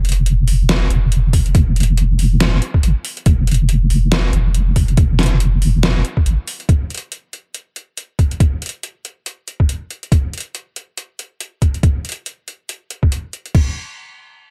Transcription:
Already playing: F1
0.05 closed hi-hat
0.09 closed hi-hat
0.12 closed hi-hat
0.26 closed hi-hat
0.47 F1, open hi-hat
0.69 snare, closed hi-hat
0.90 F1, closed hi-hat
1.12 closed hi-hat
1.33 kick, open hi-hat
1.46 closed hi-hat
1.55 F1, kick, closed hi-hat
1.76 closed hi-hat
1.80 closed hi-hat
1.83 closed hi-hat
1.97 closed hi-hat
2.19 F1, open hi-hat
2.40 snare, closed hi-hat
2.62 closed hi-hat
2.74 kick
2.83 G#1, closed hi-hat
3.05 open hi-hat
3.17 closed hi-hat
3.26 F1, kick, closed hi-hat
3.47 closed hi-hat
3.51 closed hi-hat
3.54 closed hi-hat
3.69 closed hi-hat
3.90 F1, open hi-hat
4.12 snare, closed hi-hat
4.33 F1, closed hi-hat
4.55 closed hi-hat
4.76 kick, open hi-hat
4.88 closed hi-hat
4.97 F1, kick, closed hi-hat
5.19 snare, closed hi-hat
5.23 closed hi-hat
5.26 closed hi-hat
5.40 closed hi-hat
5.62 F1, open hi-hat
5.83 snare, closed hi-hat
6.05 closed hi-hat
6.17 kick
6.26 G#1, closed hi-hat
6.47 open hi-hat
6.60 closed hi-hat
6.69 kick, closed hi-hat
6.90 closed hi-hat
6.95 closed hi-hat
6.98 closed hi-hat
7.12 closed hi-hat
7.33 closed hi-hat
7.54 closed hi-hat
7.76 closed hi-hat
7.97 closed hi-hat
8.19 kick, closed hi-hat
8.31 closed hi-hat
8.40 kick, closed hi-hat
8.62 closed hi-hat
8.66 closed hi-hat
8.69 closed hi-hat
8.83 closed hi-hat
9.05 closed hi-hat
9.26 closed hi-hat
9.48 closed hi-hat
9.60 kick
9.69 closed hi-hat
9.91 closed hi-hat
10.03 closed hi-hat
10.12 kick, closed hi-hat
10.33 closed hi-hat
10.38 closed hi-hat
10.40 closed hi-hat
10.55 closed hi-hat
10.76 closed hi-hat
10.98 closed hi-hat
11.19 closed hi-hat
11.40 closed hi-hat
11.62 kick, closed hi-hat
11.74 closed hi-hat
11.83 kick, closed hi-hat
12.05 closed hi-hat
12.09 closed hi-hat
12.12 closed hi-hat
12.26 closed hi-hat
12.48 closed hi-hat
12.69 closed hi-hat
12.90 closed hi-hat
13.03 kick
13.12 closed hi-hat
13.33 closed hi-hat
13.46 closed hi-hat
13.55 kick, crash

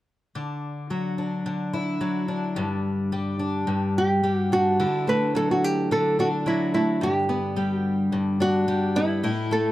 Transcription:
0.35 D3
0.90 F#3
1.18 D4
1.46 D3
1.74 E4
2.01 F#3
2.28 D4
2.56 G2
3.12 G3
3.39 D4
3.67 G2
3.98 G4
4.23 G3
4.35 F#4
4.52 D4 F#4
4.80 D3 E4
5.07 A3 B4
5.35 F#3 A4
5.51 F#4
5.64 G4
5.91 D3 A4
6.19 D4 F#4
6.46 F#3 E4
6.74 A3 E4
7.01 G2 G4
7.29 B3
7.56 G3
7.74 F#4
8.12 G2
8.40 D4 F#4
8.68 G3
8.96 B3 E4
9.23 A2 E4
9.51 A3 A4

